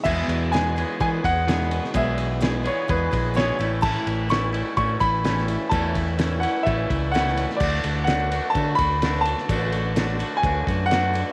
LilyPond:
<<
  \new Staff \with { instrumentName = "Grand piano" } { \time 4/4 \key e \mixolydian \tempo 4 = 127 e''4 gis''4 gis''8 fis''4. | e''4 r8 cis''8 b'4 cis''8. r16 | a''4 cis'''4 cis'''8 b''4. | a''4 r8 fis''8 e''4 fis''8. r16 |
d''4 fis''4 a''8 b''4 a''8~ | a''2 gis''4 fis''8. r16 | }
  \new Staff \with { instrumentName = "Clean electric guitar" } { \time 4/4 \key e \mixolydian <e, b, e gis b gis'>4 <e gis b gis'>8 <e gis b gis'>8 <e gis b gis'>8 <e gis b gis'>8 <e, b, e gis b gis'>4 | <e, b, e gis b gis'>4 <e gis b gis'>8 <e gis b gis'>8 <e gis b gis'>8 <e gis b gis'>8 <e, b, e gis b gis'>8 <a, e a cis' e'>8 | <a, e a cis' e'>4 <e a cis' e'>8 <a cis' e'>8 <e a cis' e'>8 <a cis' e'>8 <a, e a cis' e'>4 | <a, e a cis' e'>4 <e a cis' e'>8 <a cis' e'>8 <e a cis' e'>8 <a cis' e'>8 <a, e a cis' e'>4 |
<d a d' fis'>4 <d a d' fis'>8 <a d' fis'>8 <d a d' fis'>8 <a d' fis'>8 <d a d' fis'>4 | <d a d' fis'>4 <d a d' fis'>8 <a d' fis'>8 <d a d' fis'>8 <a d' fis'>8 <d a d' fis'>4 | }
  \new Staff \with { instrumentName = "Steel-string acoustic guitar" } { \time 4/4 \key e \mixolydian <e, b, e gis b gis'>8 <e gis b gis'>8 <e, b, e gis b gis'>8 <e gis b gis'>8 <e gis b gis'>8 <e gis b gis'>8 <e, b, e gis b gis'>8 <e gis b gis'>8 | <e, b, e gis b gis'>8 <e gis b gis'>8 <e, b, e gis b gis'>8 <e gis b gis'>8 <e gis b gis'>8 <e gis b gis'>8 <e, b, e gis b gis'>8 <a cis' e'>8 | <a, e a cis' e'>8 <a cis' e'>8 <a, e a cis' e'>8 <a cis' e'>8 <e a cis' e'>8 <a cis' e'>8 <a, e a cis' e'>8 <a cis' e'>8 | <a, e a cis' e'>8 <a cis' e'>8 <a, e a cis' e'>8 <a cis' e'>8 <a e'>8 <a cis' e'>8 <a, e a cis' e'>8 <a cis' e'>8 |
<d a d' fis'>8 <a d' fis'>8 <d a d' fis'>8 <a fis'>8 <d a d' fis'>8 <a d' fis'>8 <d a d' fis'>8 <a d' fis'>8 | <d a d' fis'>8 <a d' fis'>8 <d a d' fis'>8 <a d' fis'>8 <d a d' fis'>8 <a d' fis'>8 <d a d' fis'>8 <a d' fis'>8 | }
  \new Staff \with { instrumentName = "Fingered electric bass" } { \clef bass \time 4/4 \key e \mixolydian e,8 e,4. e8 e,4. | b,,2 e,8 ais,,4 a,,8~ | a,,8 a,,4. a,8 a,,4. | e,2 a,,8 cis,4. |
d,8 d,4. d8 d,4. | a,,2 d,8 fis,4. | }
  \new DrumStaff \with { instrumentName = "Drums" } \drummode { \time 4/4 <cymc bd>8 cymr8 <cymr sn>8 cymr8 <bd cymr>8 <bd cymr>8 <cymr sn>16 sn16 cymr16 sn16 | <bd cymr>8 cymr8 <cymr sn>8 cymr8 <bd cymr>8 <bd cymr>8 <cymr sn>16 sn16 cymr8 | <cymc bd>8 cymr8 <cymr sn>8 cymr8 <bd cymr>8 <bd cymr>8 <cymr sn>16 sn16 cymr8 | <bd cymr>8 <bd cymr>8 <cymr sn>8 cymr8 <bd cymr>8 <bd cymr>8 <cymr sn>16 sn16 cymr16 sn16 |
<cymc bd>8 cymr8 <cymr sn>8 cymr8 <bd cymr>8 <bd cymr>8 <cymr sn>16 sn16 cymr16 sn16 | <bd cymr>8 cymr8 <cymr sn>8 cymr8 <bd cymr>8 <bd cymr>8 <cymr sn>8 cymr8 | }
>>